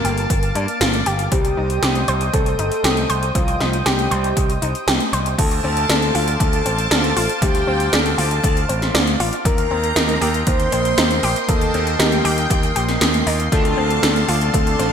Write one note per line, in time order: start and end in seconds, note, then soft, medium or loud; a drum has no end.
0.00 1.28 A#3 medium
0.00 0.45 A#4 loud
0.00 1.28 F5 medium
0.00 1.30 A5 medium
0.00 1.28 D6 medium
0.04 0.25 G1 medium
0.04 0.19 G4 loud
0.04 closed hi-hat medium
0.18 closed hi-hat soft
0.30 0.51 G1 medium
0.30 0.45 A#3 medium
0.30 kick loud
0.30 closed hi-hat medium
0.43 closed hi-hat soft
0.55 0.66 G2 medium
0.55 0.70 D4 medium
0.55 closed hi-hat medium
0.68 closed hi-hat soft
0.81 1.02 G1 loud
0.81 1.03 F4 loud
0.81 snare loud
0.81 closed hi-hat medium
0.94 closed hi-hat soft
1.06 1.27 G1 medium
1.06 1.21 G4 loud
1.06 closed hi-hat medium
1.19 closed hi-hat soft
1.32 1.52 C2 loud
1.32 1.46 C4 medium
1.32 2.23 G4 loud
1.32 5.34 C5 medium
1.32 5.34 D#5 medium
1.32 5.34 G5 medium
1.32 5.35 D#6 medium
1.32 kick loud
1.32 closed hi-hat medium
1.45 closed hi-hat soft
1.57 1.78 C2 medium
1.57 1.72 D#4 medium
1.70 closed hi-hat soft
1.83 2.03 C2 loud
1.83 2.05 G4 loud
1.83 snare loud
1.83 closed hi-hat medium
1.95 closed hi-hat soft
2.08 2.29 C2 loud
2.08 2.23 C5 loud
2.08 closed hi-hat medium
2.21 closed hi-hat soft
2.33 2.54 C2 medium
2.33 2.48 C4 medium
2.33 3.25 A4 loud
2.33 kick loud
2.33 closed hi-hat medium
2.46 closed hi-hat soft
2.59 2.69 G1 medium
2.59 2.74 D#4 medium
2.59 closed hi-hat medium
2.72 closed hi-hat soft
2.84 3.05 C2 medium
2.84 3.06 G4 loud
2.84 snare loud
2.84 closed hi-hat medium
2.97 closed hi-hat soft
3.09 3.30 C2 medium
3.09 3.24 C5 loud
3.09 closed hi-hat medium
3.23 closed hi-hat soft
3.35 3.56 C2 loud
3.35 3.50 C4 medium
3.35 3.77 F4 medium
3.35 kick loud
3.35 closed hi-hat medium
3.48 closed hi-hat soft
3.60 3.81 C2 medium
3.60 3.75 D#4 medium
3.60 snare medium
3.60 closed hi-hat soft
3.73 closed hi-hat soft
3.86 4.07 C2 medium
3.86 4.52 G4 loud
3.86 4.08 G4 loud
3.86 snare loud
3.86 closed hi-hat medium
3.99 closed hi-hat soft
4.11 4.32 C2 medium
4.11 4.26 C5 loud
4.11 closed hi-hat medium
4.24 closed hi-hat soft
4.37 4.57 C2 medium
4.37 4.51 C4 medium
4.37 kick loud
4.37 closed hi-hat medium
4.50 closed hi-hat soft
4.62 4.72 C2 medium
4.62 4.77 D#4 medium
4.62 closed hi-hat medium
4.75 closed hi-hat soft
4.88 4.98 C2 medium
4.88 5.10 G4 loud
4.88 snare loud
4.88 closed hi-hat loud
5.00 closed hi-hat soft
5.13 5.34 C2 medium
5.13 5.28 C5 loud
5.13 closed hi-hat medium
5.26 closed hi-hat soft
5.38 5.59 D2 loud
5.38 5.53 A3 medium
5.38 6.30 A4 loud
5.38 9.41 C5 medium
5.38 9.41 F5 medium
5.38 6.30 A5 loud
5.38 9.41 A5 medium
5.38 9.41 D6 medium
5.38 kick loud
5.38 closed hi-hat loud
5.38 crash loud
5.51 closed hi-hat soft
5.64 5.85 D2 medium
5.64 5.79 C4 medium
5.77 closed hi-hat soft
5.89 6.10 D2 medium
5.89 6.11 D4 loud
5.89 snare loud
5.89 closed hi-hat medium
6.02 closed hi-hat soft
6.15 6.35 D2 loud
6.15 6.29 F4 loud
6.15 open hi-hat medium
6.28 closed hi-hat soft
6.40 6.61 D2 medium
6.40 6.55 A3 medium
6.40 7.32 A4 loud
6.40 7.32 A5 loud
6.40 kick loud
6.40 closed hi-hat loud
6.53 closed hi-hat soft
6.66 6.86 A1 medium
6.66 6.80 C4 medium
6.66 closed hi-hat medium
6.79 closed hi-hat soft
6.91 7.12 D2 loud
6.91 7.13 D4 loud
6.91 snare loud
6.91 closed hi-hat loud
7.04 closed hi-hat soft
7.17 7.27 A1 medium
7.17 7.31 F4 loud
7.17 open hi-hat medium
7.29 closed hi-hat soft
7.42 7.63 D2 loud
7.42 7.57 A3 medium
7.42 7.95 G4 loud
7.42 7.93 G5 medium
7.42 kick loud
7.42 closed hi-hat loud
7.55 closed hi-hat soft
7.67 7.88 D2 medium
7.67 7.82 C4 medium
7.80 closed hi-hat soft
7.93 8.14 D2 loud
7.93 8.15 D4 loud
7.93 8.59 A4 loud
7.93 8.59 A5 loud
7.93 snare loud
7.93 closed hi-hat loud
8.06 closed hi-hat soft
8.18 8.39 D2 medium
8.18 8.33 F4 loud
8.18 open hi-hat medium
8.31 closed hi-hat soft
8.44 8.64 D2 medium
8.44 8.58 A3 medium
8.44 kick loud
8.44 closed hi-hat loud
8.57 closed hi-hat soft
8.69 8.90 A1 medium
8.69 8.84 C4 medium
8.69 closed hi-hat medium
8.82 snare soft
8.82 closed hi-hat soft
8.94 9.15 D2 loud
8.94 9.16 D4 loud
8.94 snare loud
8.94 closed hi-hat loud
9.07 closed hi-hat soft
9.20 9.30 A1 medium
9.20 9.35 F4 loud
9.20 open hi-hat medium
9.33 closed hi-hat soft
9.45 9.66 D#2 loud
9.45 9.60 A#3 medium
9.45 13.48 A#3 medium
9.45 10.37 A#4 loud
9.45 13.48 D#5 medium
9.45 13.48 G5 medium
9.45 10.37 A#5 loud
9.45 14.93 C6 medium
9.45 kick loud
9.45 closed hi-hat medium
9.58 closed hi-hat soft
9.71 9.91 D#2 medium
9.71 9.85 C4 medium
9.84 closed hi-hat soft
9.96 10.17 D#2 loud
9.96 10.18 D#4 loud
9.96 snare loud
9.96 closed hi-hat medium
10.09 closed hi-hat soft
10.21 10.42 D#2 medium
10.21 10.36 G4 loud
10.21 open hi-hat medium
10.34 closed hi-hat soft
10.47 10.68 D#2 medium
10.47 10.62 A#3 medium
10.47 11.38 C5 loud
10.47 11.38 C6 loud
10.47 kick loud
10.47 closed hi-hat loud
10.60 closed hi-hat soft
10.72 10.93 A#1 medium
10.72 10.87 C4 medium
10.72 closed hi-hat medium
10.85 closed hi-hat soft
10.98 11.18 D#2 medium
10.98 11.20 D#4 loud
10.98 snare loud
10.98 closed hi-hat loud
11.11 closed hi-hat soft
11.23 11.34 A#1 medium
11.23 11.38 G4 loud
11.23 open hi-hat medium
11.36 closed hi-hat soft
11.48 11.69 D#2 loud
11.48 11.63 A#3 medium
11.48 11.91 A4 loud
11.48 11.91 A5 medium
11.48 kick loud
11.48 closed hi-hat medium
11.61 closed hi-hat soft
11.74 11.95 D#2 medium
11.74 11.89 C4 medium
11.74 closed hi-hat soft
11.87 closed hi-hat soft
11.99 12.20 D#2 loud
11.99 12.21 D#4 loud
11.99 12.65 G4 loud
11.99 12.66 G5 loud
11.99 snare loud
11.99 closed hi-hat medium
12.12 closed hi-hat soft
12.25 12.45 D#2 loud
12.25 12.39 G4 loud
12.25 open hi-hat medium
12.38 closed hi-hat soft
12.50 12.71 D#2 medium
12.50 12.65 A#3 medium
12.50 kick loud
12.50 closed hi-hat medium
12.63 closed hi-hat soft
12.76 12.96 A#1 medium
12.76 12.90 G4 medium
12.76 closed hi-hat medium
12.89 snare soft
12.89 closed hi-hat soft
13.01 13.22 D#2 medium
13.01 13.23 A#3 medium
13.01 snare loud
13.01 closed hi-hat medium
13.14 closed hi-hat soft
13.27 13.47 D#2 loud
13.27 13.49 D#4 medium
13.27 open hi-hat medium
13.40 closed hi-hat soft
13.52 13.73 D2 loud
13.52 14.76 D3 medium
13.52 14.76 A3 medium
13.52 13.67 A3 medium
13.52 14.76 C4 medium
13.52 14.76 D4 medium
13.52 14.76 F4 loud
13.52 14.93 A4 medium
13.52 14.44 A4 loud
13.52 14.93 D5 medium
13.52 14.93 F5 medium
13.52 14.44 A5 loud
13.52 kick loud
13.52 closed hi-hat medium
13.65 closed hi-hat soft
13.77 13.98 D2 medium
13.77 13.92 C4 medium
13.90 closed hi-hat soft
14.03 14.24 D2 loud
14.03 14.25 D4 loud
14.03 snare loud
14.03 closed hi-hat medium
14.16 closed hi-hat soft
14.28 14.49 D2 medium
14.28 14.43 F4 loud
14.28 open hi-hat medium
14.41 closed hi-hat soft
14.53 14.74 D2 medium
14.53 14.68 A3 medium
14.53 14.93 A4 loud
14.53 14.93 A5 loud
14.53 kick loud
14.53 closed hi-hat medium
14.67 closed hi-hat soft
14.79 14.93 A1 medium
14.79 14.93 D3 medium
14.79 14.93 A3 medium
14.79 14.93 C4 medium
14.79 14.93 D4 medium
14.79 14.93 F4 medium
14.79 closed hi-hat medium